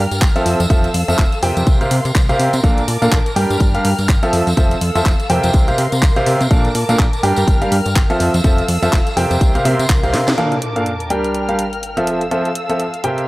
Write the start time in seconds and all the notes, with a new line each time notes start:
Already playing: A#4 G5 F6
0.11 G2, closed hi-hat, tambourine
0.22 G1, kick, clap, closed hi-hat, tambourine
0.35 F3 C4 F4 A4 E5, closed hi-hat, tambourine
0.46 F2 A4 F5 E6, open hi-hat
0.60 F2, closed hi-hat, tambourine
0.70 F1 F3 C4 F4 A4 E5, kick, closed hi-hat, tambourine
0.84 closed hi-hat, tambourine
0.94 F2, open hi-hat
1.08 F2 F3 C4 F4 A4 E5, closed hi-hat, tambourine
1.18 F1, kick, clap, closed hi-hat
1.32 closed hi-hat, tambourine
1.43 F2 C3 C4 G4 A#4 G5, open hi-hat
1.57 F2, closed hi-hat, tambourine
1.67 C2 A#4 F5 C6, kick, closed hi-hat, tambourine
1.81 C3 C4 G4 A#4 F5, closed hi-hat, tambourine
1.91 C3, open hi-hat
2.05 C3, closed hi-hat, tambourine
2.15 C2, kick, clap, closed hi-hat, tambourine
2.29 C3 C4 G4 A#4 F5, closed hi-hat, tambourine
2.40 C3, open hi-hat
2.53 C3, closed hi-hat, tambourine
2.64 A#1 A#2 D4 A4 A#4 F5 A5 D6, kick, closed hi-hat
2.77 closed hi-hat, tambourine
2.88 A#2, open hi-hat
3.02 A#2 D4 A4 A#4 F5, closed hi-hat, tambourine
3.11 A#1, kick, clap, closed hi-hat, tambourine
3.26 closed hi-hat, tambourine
3.36 G2 G3 D4 G4 A#4 G5 F6, open hi-hat
3.50 G2, closed hi-hat, tambourine
3.60 G1, kick, closed hi-hat, tambourine
3.74 G3 D4 G4 A#4 F5, closed hi-hat, tambourine
3.85 G2, open hi-hat
3.98 G2, closed hi-hat, tambourine
4.09 G1, kick, clap, closed hi-hat, tambourine
4.23 F3 C4 F4 A4 E5, closed hi-hat, tambourine
4.33 F2 A4 F5 E6, open hi-hat
4.47 F2, closed hi-hat, tambourine
4.57 F1 F3 C4 F4 A4 E5, kick, closed hi-hat, tambourine
4.71 closed hi-hat, tambourine
4.81 F2, open hi-hat
4.95 F2 F3 C4 F4 A4 E5, closed hi-hat, tambourine
5.06 F1, kick, clap, closed hi-hat, tambourine
5.20 closed hi-hat, tambourine
5.30 F2 C3 C4 G4 A#4 G5, open hi-hat
5.43 F2, closed hi-hat, tambourine
5.53 C2 A#4 C6, kick, closed hi-hat, tambourine
5.67 C3 C4 G4 A#4 F5, closed hi-hat, tambourine
5.78 C3, open hi-hat
5.92 C3, closed hi-hat, tambourine
6.02 C2, kick, clap, closed hi-hat
6.16 C3 C4 G4 A#4 F5, closed hi-hat, tambourine
6.26 C3, open hi-hat
6.41 C3, closed hi-hat, tambourine
6.51 A#1 A#2 D4 A4 A#4 F5 A5 D6, kick, closed hi-hat, tambourine
6.64 closed hi-hat, tambourine
6.75 A#2, open hi-hat
6.89 A#2 D4 A4 A#4 F5, closed hi-hat, tambourine
6.99 A#1, kick, clap, closed hi-hat, tambourine
7.13 closed hi-hat, tambourine
7.23 G2 G3 D4 G4 A#4 G5 F6, open hi-hat
7.36 G2, closed hi-hat, tambourine
7.48 G1, kick, closed hi-hat, tambourine
7.61 G3 D4 G4 A#4 F5, closed hi-hat, tambourine
7.72 G2, open hi-hat
7.85 G2, closed hi-hat, tambourine
7.96 G1, kick, clap, closed hi-hat, tambourine
8.10 F3 C4 F4 A4 E5, closed hi-hat, tambourine
8.20 F2 A4 F5 E6, open hi-hat
8.34 F2, closed hi-hat, tambourine
8.44 F1 F3 C4 F4 A4 E5, kick, closed hi-hat, tambourine
8.58 closed hi-hat, tambourine
8.68 F2, open hi-hat
8.82 F2 F3 C4 F4 A4 E5, closed hi-hat, tambourine
8.92 F1, kick, clap, closed hi-hat, tambourine
9.07 closed hi-hat, tambourine
9.17 F2 C3 C4 G4 A#4 G5, open hi-hat
9.30 F2, closed hi-hat, tambourine
9.41 C2 A#4 C6, kick, closed hi-hat, tambourine
9.55 C3 C4 G4 A#4 F5, closed hi-hat, tambourine
9.65 C3 C4 G4 A#4 E5, open hi-hat
9.79 C3, closed hi-hat, tambourine
9.89 C2, kick, clap, closed hi-hat, tambourine
10.03 C3 C4 G4 A#4 F5, closed hi-hat, tambourine
10.14 C3, snare, open hi-hat
10.27 C3, snare, closed hi-hat, tambourine
10.38 A#2 D4 A4 A#4 F5 A5 D6, closed hi-hat, sub drop
10.52 closed hi-hat
10.62 closed hi-hat
10.76 A#2 D4 A4 A#4 F5, closed hi-hat
10.86 closed hi-hat
11.00 closed hi-hat
11.10 G3 D4 G4 A#4 G5 F6, closed hi-hat
11.24 closed hi-hat
11.35 closed hi-hat
11.49 G3 D4 G4 A#4 F5, closed hi-hat
11.59 closed hi-hat
11.73 closed hi-hat
11.83 closed hi-hat
11.97 F3 C4 F4 A4 E5, closed hi-hat
12.07 A4 F5 E6, closed hi-hat
12.21 closed hi-hat
12.31 F3 C4 F4 A4 E5, closed hi-hat
12.45 closed hi-hat
12.55 closed hi-hat
12.70 F3 C4 F4 A4 E5, closed hi-hat
12.80 closed hi-hat
12.94 closed hi-hat
13.04 C3 C4 G4 A#4 G5, closed hi-hat
13.18 closed hi-hat